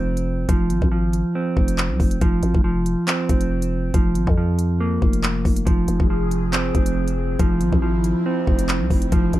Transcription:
0.00 0.46 F1 loud
0.00 0.48 F3 medium
0.00 0.48 C4 medium
0.17 closed hi-hat medium
0.49 0.72 F1 loud
0.49 0.90 F3 medium
0.49 kick loud
0.49 closed hi-hat medium
0.70 0.81 G#1 loud
0.70 closed hi-hat medium
0.82 1.23 G#1 loud
0.82 kick loud
0.92 2.20 F3 medium
1.13 closed hi-hat medium
1.35 2.22 C4 medium
1.57 1.91 F1 loud
1.57 kick medium
1.68 closed hi-hat medium
1.78 clap loud
1.78 closed hi-hat medium
1.90 1.99 C2 loud
2.00 2.21 F1 loud
2.00 kick medium
2.00 open hi-hat medium
2.11 closed hi-hat medium
2.21 2.42 F1 loud
2.21 2.63 F3 loud
2.21 kick loud
2.21 closed hi-hat medium
2.43 2.54 G#1 loud
2.43 closed hi-hat medium
2.55 2.96 F1 loud
2.55 kick loud
2.64 3.93 F3 medium
2.86 closed hi-hat medium
3.07 3.94 C4 medium
3.07 clap loud
3.07 closed hi-hat medium
3.29 3.92 F1 loud
3.29 kick medium
3.29 closed hi-hat medium
3.41 closed hi-hat medium
3.62 closed hi-hat medium
3.94 4.17 F1 loud
3.94 4.36 F3 medium
3.94 kick loud
3.94 closed hi-hat medium
4.15 4.27 G#1 medium
4.15 closed hi-hat medium
4.27 4.99 F2 loud
4.27 kick loud
4.37 5.65 F3 medium
4.59 closed hi-hat medium
4.80 5.67 A#3 medium
5.02 5.43 F1 loud
5.02 kick medium
5.13 closed hi-hat medium
5.24 clap loud
5.24 closed hi-hat medium
5.45 5.66 F1 loud
5.45 kick medium
5.45 open hi-hat medium
5.56 closed hi-hat medium
5.66 5.87 F1 loud
5.66 6.09 F3 medium
5.66 9.40 F3 medium
5.66 9.40 C4 medium
5.66 7.38 G#4 medium
5.66 kick loud
5.66 closed hi-hat medium
5.88 5.99 F1 loud
5.88 closed hi-hat medium
6.00 6.72 F1 loud
6.00 kick loud
6.10 7.38 F3 medium
6.31 closed hi-hat medium
6.52 7.39 C4 medium
6.52 clap loud
6.52 closed hi-hat medium
6.75 7.37 F1 loud
6.75 kick medium
6.75 closed hi-hat medium
6.86 closed hi-hat medium
7.08 closed hi-hat medium
7.39 7.62 F1 loud
7.39 7.81 F3 medium
7.39 9.10 E4 medium
7.39 kick loud
7.39 closed hi-hat medium
7.61 7.72 G#1 loud
7.61 closed hi-hat medium
7.73 8.14 G#1 loud
7.73 kick loud
7.82 9.11 F3 medium
8.04 closed hi-hat medium
8.26 9.12 C4 medium
8.47 8.82 F1 loud
8.47 kick medium
8.59 closed hi-hat medium
8.69 clap loud
8.69 closed hi-hat medium
8.80 8.90 C2 loud
8.90 9.11 F1 loud
8.90 kick medium
8.90 open hi-hat soft
9.02 closed hi-hat medium
9.12 9.33 F1 loud
9.12 9.40 F3 loud
9.12 9.40 G#4 medium
9.12 kick loud
9.12 closed hi-hat medium
9.33 9.40 G#1 loud
9.33 closed hi-hat medium

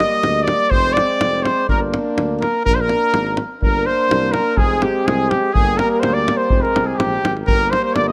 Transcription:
0.00 0.74 G3 medium
0.00 0.74 A#3 medium
0.00 0.45 D#5 loud
0.00 0.48 D#5 medium
0.00 davul high medium
0.23 0.51 D2 loud
0.23 davul high medium
0.43 0.72 D5 medium
0.48 davul high medium
0.70 0.99 F1 loud
0.70 1.69 G#3 medium
0.70 1.67 C4 medium
0.70 0.94 C5 loud
0.70 0.95 C5 loud
0.70 davul low medium
0.93 1.44 D5 loud
0.93 1.48 D5 medium
0.97 davul high medium
1.20 1.47 F1 medium
1.20 davul high medium
1.43 1.68 C5 medium
1.43 1.69 C5 medium
1.43 davul high medium
1.68 1.95 G1 medium
1.68 2.62 A#3 medium
1.68 2.48 D4 medium
1.68 1.80 A#4 medium
1.68 davul low medium
1.94 davul high medium
2.17 2.43 D2 medium
2.17 davul high medium
2.41 2.63 A#4 medium
2.41 2.64 A#4 medium
2.41 davul high medium
2.65 2.92 A#1 loud
2.65 3.41 A#3 medium
2.65 3.41 D4 medium
2.65 2.76 A#4 loud
2.65 davul low medium
2.74 2.82 C5 medium
2.74 davul high soft
2.81 3.38 A#4 loud
2.89 davul high medium
3.14 3.40 G#1 medium
3.14 davul high medium
3.27 davul high soft
3.37 davul high medium
3.60 3.88 G1 medium
3.60 4.61 A#3 medium
3.60 4.58 D4 medium
3.60 3.88 A#4 loud
3.60 3.88 A#4 medium
3.60 davul low medium
3.86 4.33 C5 medium
3.86 4.37 C5 medium
4.09 4.36 C2 loud
4.09 davul high medium
4.32 4.59 A#4 medium
4.32 4.62 A#4 medium
4.32 davul high medium
4.57 4.84 F1 medium
4.57 5.57 G#3 medium
4.57 5.53 C4 medium
4.57 4.84 G#4 medium
4.57 4.85 G#4 medium
4.57 davul low medium
4.82 5.07 G4 medium
4.82 5.09 G4 medium
4.82 davul high medium
5.06 5.32 C2 loud
5.06 5.31 G#4 medium
5.06 davul high medium
5.29 5.54 G4 medium
5.29 5.55 G4 medium
5.29 davul high medium
5.52 5.81 G1 loud
5.52 6.52 G3 medium
5.52 6.52 A#3 medium
5.52 5.78 G#4 loud
5.52 5.79 G#4 loud
5.52 davul low medium
5.77 5.87 A#4 medium
5.77 5.91 A#4 medium
5.77 davul high medium
5.88 6.01 A#4 medium
6.00 6.29 D2 medium
6.00 6.14 C5 medium
6.00 6.15 C5 medium
6.00 davul high medium
6.12 6.39 D5 medium
6.12 6.38 D5 medium
6.28 davul high medium
6.37 6.63 C5 medium
6.37 6.62 C5 medium
6.50 6.64 F1 loud
6.50 7.28 G#3 medium
6.50 7.28 C4 medium
6.50 davul low medium
6.61 6.86 A#4 medium
6.61 6.88 A#4 medium
6.65 davul high soft
6.74 6.96 C2 medium
6.74 davul high medium
6.85 6.96 G#4 medium
6.85 7.00 G#4 medium
6.94 7.20 A#1 loud
6.94 7.33 G4 medium
6.94 7.35 G4 loud
7.00 davul high medium
7.22 7.44 G#1 medium
7.22 davul high medium
7.37 davul high soft
7.46 7.73 G1 loud
7.46 8.12 G3 medium
7.46 8.12 A#3 medium
7.46 7.71 A#4 loud
7.46 7.72 A#4 loud
7.46 davul low medium
7.70 7.82 C5 medium
7.70 7.84 C5 loud
7.70 davul high medium
7.82 7.96 C5 medium
7.82 7.97 C5 medium
7.94 8.12 G1 medium
7.94 8.07 D5 loud
7.94 8.08 D5 loud
7.94 davul high medium
8.07 8.12 D#5 medium

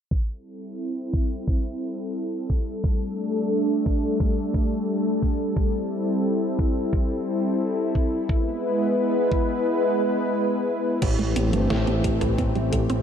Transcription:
0.11 8.25 G3 medium
0.11 2.81 C4 medium
0.11 2.81 E4 medium
0.11 8.25 A4 medium
0.11 kick loud
1.13 kick medium
1.48 kick loud
2.50 kick medium
2.84 5.54 A3 medium
2.84 5.54 D4 medium
2.84 kick loud
3.86 kick medium
4.20 kick loud
4.54 kick loud
5.22 kick medium
5.56 8.26 C4 medium
5.56 10.98 E4 medium
5.56 kick loud
6.59 kick loud
6.93 kick loud
7.95 kick medium
8.29 10.99 G#3 medium
8.29 10.99 B3 medium
8.29 10.99 B4 medium
8.29 kick loud
9.32 kick loud
11.02 11.17 A1 loud
11.02 13.02 E3 medium
11.02 11.09 G3 medium
11.02 13.02 A3 medium
11.02 13.02 C4 medium
11.02 13.02 G4 medium
11.02 kick loud
11.02 closed hi-hat medium
11.02 crash medium
11.19 11.34 A1 medium
11.19 11.31 A3 medium
11.19 closed hi-hat soft
11.36 11.51 A1 medium
11.36 11.49 C4 medium
11.36 closed hi-hat medium
11.53 11.68 G1 medium
11.53 11.61 G3 medium
11.53 closed hi-hat medium
11.70 11.85 A1 loud
11.70 11.83 A3 loud
11.70 snare loud
11.70 closed hi-hat soft
11.87 12.03 A1 medium
11.87 12.00 C4 medium
11.87 closed hi-hat soft
12.04 12.20 A1 medium
12.04 12.12 G3 medium
12.04 kick loud
12.04 closed hi-hat medium
12.21 12.37 A1 medium
12.21 12.34 A3 medium
12.21 closed hi-hat medium
12.21 mid tom medium
12.38 12.54 A1 loud
12.38 12.55 C4 medium
12.38 kick loud
12.38 closed hi-hat medium
12.55 12.71 A1 medium
12.55 12.68 G3 medium
12.55 closed hi-hat soft
12.73 12.88 A1 medium
12.73 12.85 A3 medium
12.73 kick medium
12.73 closed hi-hat medium
12.90 13.02 A1 medium
12.90 13.02 C4 loud
12.90 closed hi-hat medium

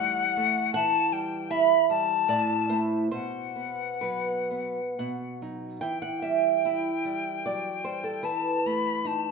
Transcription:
0.00 0.71 E3 medium
0.00 0.37 G3 soft
0.00 0.21 A3 soft
0.00 0.74 F#5 medium
0.37 0.75 A3 soft
0.74 2.25 E3 medium
0.74 1.47 F#5 loud
0.74 1.14 A5 medium
1.12 1.74 G3 soft
1.12 1.52 G5 medium
1.51 2.13 E4 soft
1.51 2.25 E5 medium
1.51 1.88 B5 medium
1.89 2.29 G3 soft
1.89 2.79 A5 medium
2.28 3.08 A2 medium
2.28 2.67 D5 medium
2.69 3.07 A3 soft
2.69 3.07 E4 soft
2.69 3.09 C5 medium
3.11 4.93 B2 soft
3.11 3.97 C5 medium
3.11 5.37 F#5 medium
3.56 4.30 B3 soft
4.01 4.79 F#3 soft
4.01 4.93 B4 medium
4.51 4.98 B3 soft
4.99 5.81 B2 soft
4.99 5.80 F#5 medium
5.42 5.79 F#3 soft
5.42 5.79 D#4 soft
5.81 8.20 E3 soft
5.81 6.01 G5 medium
5.81 8.26 G5 medium
6.02 6.22 F#5 medium
6.22 6.90 G3 soft
6.22 7.41 E5 medium
6.65 7.30 E4 soft
7.05 7.68 G3 soft
7.46 7.85 F#3 soft
7.46 7.83 D5 medium
7.84 8.24 G3 soft
7.84 8.04 C5 medium
8.04 8.24 A4 medium
8.23 9.31 E3 soft
8.23 9.31 B4 medium
8.23 8.68 A5 medium
8.66 9.29 A3 soft
8.66 9.08 B5 medium
9.05 9.31 D#4 soft
9.05 9.31 A5 medium

